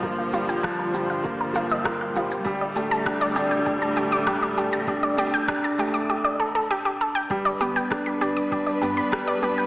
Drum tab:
SH |x-xxx-xxx-xxx-xx|x-xxx-xxx-xxx-xx|x-xxx-xx--------|xxxxxxxxxxxxxxxx|
SD |----r-------r---|----r-------r---|----r-----------|----r-------r---|
BD |o---o---o---o---|o---o---o---o---|o---o-----------|o---o---o---o---|